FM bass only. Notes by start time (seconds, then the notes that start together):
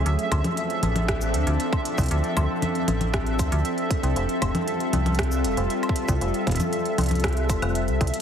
0.06 D2
0.32 D2
0.83 A1
1.34 D2
1.47 D2
1.98 C2
2.11 D2
2.37 D2
2.88 A1
3.39 D2
3.52 D2
4.03 C2
4.16 F1
4.42 F1
4.93 C2
5.44 F1
5.57 F1
6.09 C2
6.21 F1
6.47 F1
6.98 C2
7.50 F1
7.62 F1
7.88 C2
8.01 C2